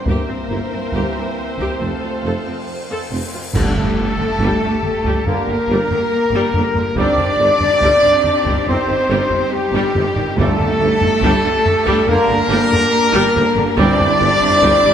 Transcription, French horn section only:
0.06 1.80 A#3 medium
1.79 2.66 A3 medium
3.54 5.22 A4 medium
5.26 6.97 A#4 loud
6.98 8.64 D5 loud
8.67 9.52 C5 medium
9.52 10.20 G4 medium
10.37 12.05 A4 loud
12.08 13.78 A#4 loud
13.78 14.94 D5 loud

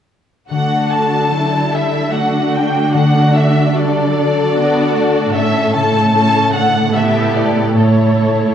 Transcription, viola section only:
0.50 1.28 A3 soft
0.50 1.28 D4 soft
1.31 1.72 F#3 soft
1.31 2.12 E4 soft
1.71 2.12 G3 soft
2.12 2.91 A3 soft
2.12 4.53 D4 soft
2.92 3.72 A3 soft
3.75 4.14 G3 soft
4.14 4.54 F#3 soft
4.54 4.94 B3 medium
4.54 5.33 D4 medium
4.94 5.34 A3 soft
5.35 6.91 A3 soft
5.35 6.14 C#4 soft
6.15 6.53 C#4 soft
6.54 6.94 D3 soft
6.95 7.75 B3 soft
6.95 7.75 E4 soft
7.75 8.55 A3 soft
7.75 8.55 E4 soft

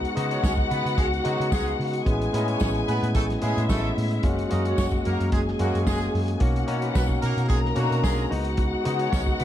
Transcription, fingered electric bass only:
0.17 0.38 C#3 loud
0.43 0.64 C#2 loud
0.71 0.82 C#3 loud
0.85 0.95 C#3 loud
0.98 1.19 C#2 loud
1.25 1.36 C#3 loud
1.40 1.49 C#3 loud
1.52 1.73 C#2 loud
1.79 2.00 C#3 medium
2.06 2.27 A1 medium
2.33 2.54 A2 loud
2.61 2.82 A1 loud
2.88 2.99 A2 loud
3.02 3.12 A2 loud
3.15 3.36 A1 loud
3.43 3.54 A2 medium
3.57 3.67 A2 loud
3.69 3.90 A1 loud
3.97 4.18 A2 loud
4.24 4.45 F#1 medium
4.52 4.73 F#2 loud
4.78 4.99 F#1 loud
5.06 5.17 F#2 loud
5.20 5.30 F#2 loud
5.33 5.54 F#1 loud
5.60 5.71 F#2 medium
5.74 5.84 F#2 loud
5.87 6.08 F#1 loud
6.14 6.35 F#2 loud
6.41 6.62 B1 loud
6.68 6.89 B2 medium
6.95 7.16 B1 loud
7.23 7.34 B2 loud
7.37 7.47 B2 loud
7.50 7.71 B1 loud
7.76 7.88 B2 loud
7.91 8.01 B2 loud
8.04 8.25 B1 medium
8.31 8.74 C#2 loud
8.86 9.07 C#3 loud
9.13 9.34 C#2 loud
9.40 9.44 C#3 loud

